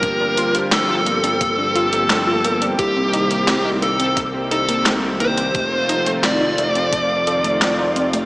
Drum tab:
HH |x-xxx-xxx-xxx-xx|x-xxx-xxx-xxx-xx|x-xxx-xxx-xxx-xx|
CP |----x-------x---|----x-------x---|----x-------x---|
SD |----o-------o---|----o-------o---|----o-------o---|
BD |o-------o-------|o-------o-------|o-------o-------|